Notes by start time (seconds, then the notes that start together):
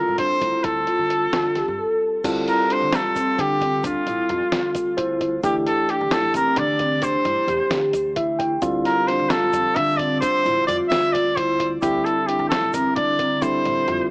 Already playing: G3 C4 F4 A4 A#4
0.08 G2
0.18 D4 C5, kick, closed hi-hat
0.41 D2 E4, kick, closed hi-hat
0.64 D2 A4, kick, closed hi-hat
0.87 F4, closed hi-hat
0.99 D3
1.10 closed hi-hat
1.33 D3 F4, snare, closed hi-hat
1.55 G4, snare, closed hi-hat
1.68 G2
1.78 A4
2.24 D2 G3 C4 E4 F4 A4, kick, closed hi-hat, crash, shaker
2.48 A#4, closed hi-hat, shaker
2.70 D4 C5, closed hi-hat
2.81 D3
2.93 F4 A4, snare, closed hi-hat, shaker
3.04 F2
3.15 F2 C4, kick, closed hi-hat, shaker
3.38 D3 D4 G4, kick, closed hi-hat
3.61 C4, kick, closed hi-hat
3.83 D2 D4 F4, kick, closed hi-hat, shaker
4.06 A1 E4, closed hi-hat, shaker
4.29 F2 F4, closed hi-hat
4.52 D3 F4, snare, closed hi-hat, shaker
4.75 D2, kick, closed hi-hat, shaker
4.97 E4 C5, kick, closed hi-hat
5.21 kick, closed hi-hat
5.43 D2 E3 A3 D4 E4 G4, kick, closed hi-hat, shaker
5.66 A4, closed hi-hat, shaker
5.89 D4 G4, closed hi-hat
6.01 D3
6.11 E4 A4, snare, closed hi-hat, shaker
6.23 E2
6.34 E2 C4 A#4, kick, closed hi-hat, shaker
6.56 D3 D4 D5, kick, closed hi-hat
6.79 C4, kick, closed hi-hat
7.02 D2 D4 C5, kick, closed hi-hat, shaker
7.25 G2 E4, closed hi-hat
7.47 E2 G4, closed hi-hat, shaker
7.70 D3 G4, snare, closed hi-hat, shaker
7.93 D2, closed hi-hat, shaker
8.16 E4 E5, kick, closed hi-hat
8.39 G5, kick, closed hi-hat
8.62 D2 D3 G3 C4 E4 F4, kick, closed hi-hat, shaker
8.85 A#4, snare, closed hi-hat, shaker
9.07 D4 C5, snare, closed hi-hat
9.19 D3
9.30 F4 A4, snare, closed hi-hat, shaker
9.42 F2
9.53 F2 C4, kick, closed hi-hat, shaker
9.76 D3 D4 E5, kick, closed hi-hat
9.97 C4 D5, kick, closed hi-hat
10.21 D2 D4 C5, kick, closed hi-hat, shaker
10.44 A1 E4, closed hi-hat, shaker
10.67 F2 F4 D5, closed hi-hat
10.89 D3 F4 E5, snare, closed hi-hat, shaker
11.13 D2 D5, kick, closed hi-hat
11.36 E4 C5, kick, closed hi-hat
11.60 kick, closed hi-hat
11.82 D2 D3 G3 C4 E4 G4, kick, closed hi-hat, shaker
12.05 A4, closed hi-hat, shaker
12.27 D4 G4, closed hi-hat
12.39 D3
12.49 E4 A4, snare, closed hi-hat, shaker
12.62 E2
12.73 E2 C4 A#4, kick, closed hi-hat, shaker
12.96 D3 D4 D5, kick, closed hi-hat
13.18 C4, kick, closed hi-hat
13.42 D2 D3 G3 C4 D4 E4 C5, kick, closed hi-hat, shaker
13.64 A1 E4, closed hi-hat
13.87 F2 F4, closed hi-hat